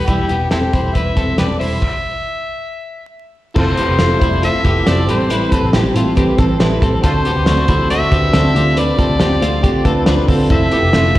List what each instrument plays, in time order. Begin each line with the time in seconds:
0.06 picked electric bass E1, steel-string acoustic guitar E3 G3 C4 E4, clean electric guitar G3 E4, harmonica G4, kick, closed hi-hat
0.28 picked electric bass E1, steel-string acoustic guitar G3 C4 E4, clean electric guitar B3 G4, closed hi-hat
0.50 picked electric bass E1, steel-string acoustic guitar E3 G3 C4 E4, harmonica C4 E4 G4, clean electric guitar C4 A4, snare, closed hi-hat
0.72 picked electric bass E1, steel-string acoustic guitar G3 C4 E4, clean electric guitar E4 C5, kick, closed hi-hat
0.94 picked electric bass E1, steel-string acoustic guitar E3 G3 C4 E4, clean electric guitar E4 B4, harmonica E5, kick, closed hi-hat
1.15 picked electric bass E1, steel-string acoustic guitar G3 C4 E4, clean electric guitar C4 A4, kick, snare, closed hi-hat
1.37 picked electric bass E1, steel-string acoustic guitar E3 G3 C4 E4, harmonica G4 B4 D5, snare, closed hi-hat
1.59 picked electric bass E1, steel-string acoustic guitar G3 C4 E4, clean electric guitar E4 C5, harmonica E5, open hi-hat
1.82 kick, crash
3.54 picked electric bass F1, steel-string acoustic guitar F3 A3 C4 E4, clean electric guitar C4 A4, synth keys E4 F4 A4, harmonica F4 A4 C5, kick, crash
3.77 steel-string acoustic guitar A3 C4 E4, clean electric guitar B3 G4, synth keys E4 F4 G4, closed hi-hat
3.89 picked electric bass F1
3.98 picked electric bass F1, steel-string acoustic guitar F3 A3 C4 E4, clean electric guitar A3 F4, synth keys E4 F4 A4, snare, closed hi-hat
4.19 picked electric bass F1, clean electric guitar G3 E4, steel-string acoustic guitar C4 E4, synth keys E4 F4 C5, kick, closed hi-hat
4.23 steel-string acoustic guitar A3
4.41 steel-string acoustic guitar F3 A3 C4 E4, clean electric guitar A3 F4, synth keys E4 F4 A4, harmonica E5, closed hi-hat
4.63 picked electric bass F1, steel-string acoustic guitar A3 E4, clean electric guitar B3 G4, synth keys E4 F4 A4, kick, closed hi-hat
4.85 picked electric bass F1, steel-string acoustic guitar F3 A3 C4 E4, clean electric guitar C4 A4, synth keys E4 F4 G4, harmonica D5, snare, closed hi-hat
5.06 picked electric bass A1, steel-string acoustic guitar G3 C4 E4, synth keys C4 G4 A4, clean electric guitar C4 G4, harmonica C5, closed hi-hat
5.29 steel-string acoustic guitar A2 E3 G3 C4 E4, clean electric guitar E4 B4, closed hi-hat
5.50 synth keys C4 G4 A4, steel-string acoustic guitar C4 E4, clean electric guitar C4 A4, harmonica B4, kick, closed hi-hat
5.54 steel-string acoustic guitar G3
5.63 picked electric bass A1
5.72 picked electric bass A1, steel-string acoustic guitar A2 E3 G3 C4 E4, synth keys C4 G4 A4, clean electric guitar C4 G4, snare, closed hi-hat
5.94 picked electric bass A1, steel-string acoustic guitar G3 C4 E4, clean electric guitar A3 F4, synth keys C4 G4 A4, closed hi-hat
6.15 steel-string acoustic guitar E3 G3 C4 E4, synth keys C4 G4 B4, clean electric guitar C4 G4, kick, closed hi-hat
6.37 picked electric bass A1, steel-string acoustic guitar G3 C4 E4, synth keys C4 G4 A4, clean electric guitar C4 A4, kick, snare, closed hi-hat
6.59 picked electric bass A1, steel-string acoustic guitar A2 E3 G3 C4 E4, synth keys C4 G4 C5, clean electric guitar E4 B4, snare, closed hi-hat
6.81 picked electric bass A1, steel-string acoustic guitar G3 C4 E4, synth keys C4 G4 C5, clean electric guitar C4 A4, kick, closed hi-hat
7.01 picked electric bass D2, steel-string acoustic guitar D3 A3 C4 F#4, clean electric guitar C4 A4, synth keys D4 F#4 C5, harmonica F4 A4 C5, kick, closed hi-hat
7.23 clean electric guitar B3 G4, steel-string acoustic guitar C4 F#4, synth keys D4 F#4 C5, closed hi-hat
7.28 steel-string acoustic guitar A3
7.36 picked electric bass D2
7.44 picked electric bass D2, steel-string acoustic guitar D3 A3 C4, clean electric guitar A3 F#4, synth keys D4 F#4 D5, snare, closed hi-hat
7.48 steel-string acoustic guitar F#4
7.67 picked electric bass D2, clean electric guitar G3 E4, steel-string acoustic guitar A3 C4 F#4, synth keys D4 F#4 A4, kick, closed hi-hat
7.88 steel-string acoustic guitar D3 A3 C4, clean electric guitar A3 F#4, synth keys D4 F#4 C5, harmonica E5, closed hi-hat
7.93 steel-string acoustic guitar F#4
8.10 picked electric bass D2, steel-string acoustic guitar A3 C4 F#4, clean electric guitar B3 G4, synth keys D4 F#4 C5, kick, closed hi-hat
8.32 picked electric bass D2, steel-string acoustic guitar D3 A3 C4 F#4, clean electric guitar C4 A4, synth keys D4 F#4 C5, snare, closed hi-hat
8.54 picked electric bass D2, steel-string acoustic guitar A3 C4 F4, clean electric guitar C4 G4, synth keys D4 F4 C5, closed hi-hat
8.76 steel-string acoustic guitar D3 A3 C4 F4, clean electric guitar D4 B4, harmonica D5, closed hi-hat
8.97 steel-string acoustic guitar A3 C4 F4, clean electric guitar C4 A4, synth keys D4 F4 G4, kick, closed hi-hat
9.10 picked electric bass D2
9.19 picked electric bass D2, steel-string acoustic guitar D3 A3 C4 F4, clean electric guitar C4 G4, synth keys D4 F4 C5, snare, closed hi-hat
9.40 picked electric bass D2, clean electric guitar A3 F4, steel-string acoustic guitar A3 C4 F4, synth keys D4 F4 C5, closed hi-hat
9.61 steel-string acoustic guitar D3 A3 C4, clean electric guitar C4 G4, synth keys D4 F4 G4, kick, closed hi-hat
9.66 steel-string acoustic guitar F4
9.84 picked electric bass D2, steel-string acoustic guitar A3 C4 F4, clean electric guitar C4 A4, synth keys D4 F4 B4, kick, closed hi-hat
10.06 picked electric bass D2, steel-string acoustic guitar D3 A3 C4 F4, synth keys D4 F4 C5, clean electric guitar D4 B4, snare, closed hi-hat
10.27 picked electric bass D2, steel-string acoustic guitar A3 C4 F4, clean electric guitar C4 A4, synth keys D4 F4 A4, kick, open hi-hat
10.49 picked electric bass F1, steel-string acoustic guitar F3 A3 C4 E4, clean electric guitar C4 A4, synth keys E4 F4 A4, harmonica E5, kick, closed hi-hat
10.71 steel-string acoustic guitar A3 C4 E4, clean electric guitar B3 G4, synth keys E4 F4 G4, closed hi-hat
10.83 picked electric bass F1
10.93 picked electric bass F1, steel-string acoustic guitar F3 A3 C4 E4, clean electric guitar A3 F4, synth keys E4 F4 A4, snare, closed hi-hat
11.15 picked electric bass F1, synth keys E4 F4 B4, steel-string acoustic guitar E4, clean electric guitar E4, kick, closed hi-hat